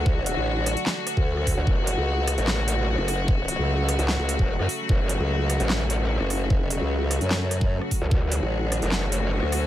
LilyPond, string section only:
\new Staff \with { instrumentName = "String section" } { \clef bass \time 4/4 \key fis \minor \tempo 4 = 149 << { fis'1~ | fis'1~ | fis'1~ | fis'1~ |
fis'1 | fis'1 | } \\ { <d fis a>1 | <cis fis a>1~ | <cis fis a>1~ | <cis fis a>1~ |
<cis fis a>1 | <d fis a>1 | } >> }